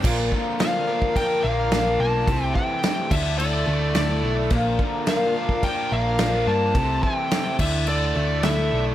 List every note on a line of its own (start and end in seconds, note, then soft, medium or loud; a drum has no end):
0.02 0.30 A#1 medium
0.02 0.31 A#2 medium
0.02 0.31 D3 medium
0.02 0.32 F3 medium
0.02 0.31 A#3 medium
0.02 0.30 D4 medium
0.02 2.25 D4 medium
0.02 2.25 F4 medium
0.02 2.25 A#4 medium
0.02 0.28 A#4 medium
0.02 2.25 D5 medium
0.02 kick loud
0.02 crash loud
0.02 crash medium
0.30 1.71 D3 medium
0.30 0.59 F3 soft
0.30 0.59 A#3 medium
0.30 0.60 D4 medium
0.30 0.59 A#4 medium
0.30 kick medium
0.59 0.87 A#2 medium
0.59 0.88 D3 medium
0.59 0.88 F3 medium
0.59 0.88 A#3 medium
0.59 0.87 D4 medium
0.59 0.86 A#4 medium
0.59 1.18 F5 medium
0.59 snare loud
0.59 crash medium
0.87 1.14 F3 soft
0.87 1.16 A#3 soft
0.87 1.16 D4 medium
0.87 1.15 A#4 medium
1.02 kick medium
1.16 1.44 F3 medium
1.16 1.44 A#3 medium
1.16 1.43 D4 medium
1.16 1.42 A#4 medium
1.16 1.45 G5 loud
1.16 kick medium
1.16 crash medium
1.43 1.70 A#1 medium
1.43 1.72 F3 soft
1.43 1.73 A#3 soft
1.43 1.72 D4 soft
1.43 1.71 A#4 medium
1.43 2.01 F5 loud
1.72 1.97 A#1 loud
1.72 2.28 A#2 medium
1.72 2.27 D3 medium
1.72 2.28 F3 medium
1.72 2.28 A#3 medium
1.72 2.29 D4 medium
1.72 2.29 A#4 medium
1.72 snare medium
1.72 crash medium
1.99 2.25 B1 medium
1.99 2.27 A#3 medium
1.99 2.55 A5 loud
2.27 2.53 C2 medium
2.27 2.55 C3 medium
2.27 2.56 A3 medium
2.27 2.56 C4 medium
2.27 3.10 E4 medium
2.27 2.55 E4 medium
2.27 3.11 G4 medium
2.27 2.54 G4 medium
2.27 3.10 A4 medium
2.27 3.11 C5 medium
2.27 kick loud
2.27 crash medium
2.55 2.82 E3 medium
2.55 2.83 C4 soft
2.55 2.83 E4 soft
2.55 2.83 G4 medium
2.55 3.13 G5 loud
2.55 kick medium
2.83 3.11 C3 medium
2.83 3.10 E3 medium
2.83 3.11 A3 medium
2.83 3.12 C4 medium
2.83 3.11 E4 medium
2.83 3.10 G4 medium
2.83 snare loud
2.83 crash medium
3.10 3.63 D2 loud
3.10 4.51 D3 medium
3.10 4.49 D4 medium
3.10 3.38 D4 soft
3.10 4.50 E4 medium
3.10 3.39 E4 medium
3.10 3.39 A4 medium
3.10 4.50 A4 medium
3.10 4.49 D5 medium
3.10 3.38 E5 medium
3.10 kick loud
3.10 crash medium
3.38 3.67 A3 medium
3.38 3.67 D4 medium
3.38 3.67 E4 medium
3.38 3.65 A4 medium
3.38 3.95 D5 medium
3.38 crash medium
3.66 3.93 D2 medium
3.66 4.22 A3 medium
3.66 3.95 D4 soft
3.66 3.95 E4 soft
3.66 3.95 A4 medium
3.94 4.22 D2 loud
3.94 4.50 D3 medium
3.94 4.51 A3 medium
3.94 4.52 D4 medium
3.94 4.52 E4 medium
3.94 4.52 A4 medium
3.94 4.35 D5 medium
3.94 snare loud
3.94 crash medium
4.23 4.49 B1 loud
4.23 4.51 A3 medium
4.50 4.77 A#1 loud
4.50 4.79 A#2 medium
4.50 4.79 D3 medium
4.50 4.80 F3 loud
4.50 4.79 A#3 medium
4.50 6.73 D4 medium
4.50 4.78 D4 medium
4.50 6.73 F4 medium
4.50 6.73 A#4 medium
4.50 4.77 A#4 medium
4.50 6.73 D5 medium
4.50 kick loud
4.50 crash medium
4.78 6.20 D3 medium
4.78 5.06 F3 medium
4.78 5.07 A#3 medium
4.78 5.07 D4 medium
4.78 5.07 A#4 medium
4.78 kick medium
5.06 5.35 A#2 medium
5.06 5.35 D3 medium
5.06 5.35 F3 medium
5.06 5.36 A#3 medium
5.06 5.34 D4 medium
5.06 5.33 A#4 medium
5.06 5.66 F5 medium
5.06 snare loud
5.06 crash medium
5.34 5.62 F3 soft
5.34 5.63 A#3 soft
5.34 5.64 D4 medium
5.34 5.63 A#4 medium
5.49 kick medium
5.63 5.91 F3 medium
5.63 5.92 A#3 medium
5.63 5.91 D4 medium
5.63 5.90 A#4 medium
5.63 5.93 G5 loud
5.63 kick loud
5.63 crash medium
5.91 6.18 A#1 medium
5.91 6.18 F3 soft
5.91 6.19 A#3 soft
5.91 6.19 D4 medium
5.91 6.19 A#4 medium
5.91 6.50 F5 loud
6.18 6.46 A#1 loud
6.18 6.75 A#2 medium
6.18 6.74 D3 medium
6.18 6.75 F3 medium
6.18 6.76 A#3 medium
6.18 6.76 D4 medium
6.18 6.76 A#4 loud
6.18 snare loud
6.18 crash medium
6.47 6.73 G2 medium
6.47 6.75 A#3 medium
6.47 7.03 A5 loud
6.75 7.01 C2 medium
6.75 7.03 C3 medium
6.75 7.04 A3 medium
6.75 7.04 C4 medium
6.75 7.57 E4 medium
6.75 7.03 E4 medium
6.75 7.59 G4 medium
6.75 7.01 G4 medium
6.75 7.58 A4 medium
6.75 7.59 C5 medium
6.75 kick loud
6.75 crash medium
7.03 7.30 E3 medium
7.03 7.31 C4 soft
7.03 7.32 E4 medium
7.03 7.31 G4 medium
7.03 7.56 G5 loud
7.03 kick medium
7.31 7.59 C3 medium
7.31 7.59 E3 medium
7.31 7.60 A3 medium
7.31 7.60 C4 medium
7.31 7.59 E4 medium
7.31 7.58 G4 medium
7.31 snare loud
7.31 crash medium
7.58 8.12 D2 loud
7.58 8.95 D3 medium
7.58 8.95 D4 medium
7.58 7.86 D4 soft
7.58 8.95 E4 medium
7.58 7.87 E4 soft
7.58 7.87 A4 medium
7.58 8.95 A4 medium
7.58 8.95 D5 medium
7.58 7.88 E5 medium
7.58 kick loud
7.58 crash loud
7.86 8.15 A3 medium
7.86 8.16 D4 medium
7.86 8.15 E4 medium
7.86 8.14 A4 medium
7.86 8.44 D5 medium
7.86 crash medium
8.15 8.42 D2 medium
8.15 8.71 A3 medium
8.15 8.43 D4 soft
8.15 8.44 E4 soft
8.15 8.44 A4 medium
8.43 8.70 D2 medium
8.43 8.95 D3 medium
8.43 8.95 A3 medium
8.43 8.95 D4 medium
8.43 8.95 E4 medium
8.43 8.95 A4 medium
8.43 8.83 E5 medium
8.43 snare loud
8.43 crash medium
8.72 8.95 B1 medium
8.72 8.95 A3 medium